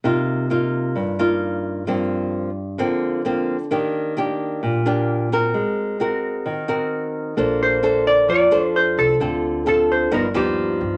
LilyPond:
<<
  \new Staff \with { instrumentName = "Hollow-body jazz guitar" } { \time 4/4 \key bes \major \tempo 4 = 131 r1 | r1 | r1 | r1 |
r8 c''4 d''8 d''4 c''8 a'8~ | a'4 a'8 c''8 bes'8 g'4 r8 | }
  \new Staff \with { instrumentName = "Nylon-string guitar" } { \time 4/4 \key bes \major << { <bes ees' f'>4 <bes ees' f'>4. <bes ees' f'>4. | <f bes c'>4. r8 <f bes c'>4 <f bes c'>8 r8 | <bes d' g'>4 <bes d' g'>4. <bes d' g'>4 <c' ges' bes'>8~ | <c' ges' bes'>4 <c' ges' bes'>4. <c' ges' bes'>4. |
<d' a' c''>4 <d' a' c''>4 r8 <d' a' c''>4. | <c' f' a'>4 <c' f' a'>4 <f b dis'>8 <f b dis'>4. | } \\ { c2 g,2 | g,2 d2 | ees2 bes,2 | aes2 ees2 |
bes2 f2 | d2 g,2 | } >> }
  \new Staff \with { instrumentName = "Upright bass" } { \clef bass \time 4/4 \key bes \major r1 | r1 | r1 | r1 |
bes,,2 f,8 f,4 c,8 | d,2 g,,8 dis,4 g,8 | }
>>